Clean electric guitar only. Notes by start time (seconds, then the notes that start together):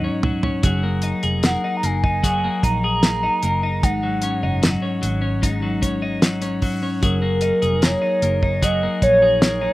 Already playing: G#2 F#3 D#4
0.04 C#4
0.24 F#3
0.44 C#4
0.63 F#3 G#4
0.83 A#3
1.03 D#4
1.23 G#4
1.44 A#3
1.64 D#4
1.84 A#3
2.04 D#4
2.23 F#3 G#4
2.44 A#3
2.64 D#4
2.84 G#4
3.04 A#3
3.23 D#4
3.43 A#3
3.63 D#4
3.83 G#2 D#4
4.03 F#3
4.23 C#4
4.43 D#4
4.63 F#3
4.82 C#4
5.02 F#3
5.22 C#4
5.42 G#2 D#4
5.62 F#3
5.82 C#4
6.02 D#4
6.22 F#3
6.42 C#4
6.62 F#3
6.83 C#4
7.03 F#3 G#4
7.22 A#3
7.42 D#4
7.62 G#4
7.82 A#3
8.02 D#4
8.23 A#3
8.43 D#4
8.62 F#3 G#4
8.83 A#3
9.02 D#4
9.22 G#4
9.42 A#3
9.61 D#4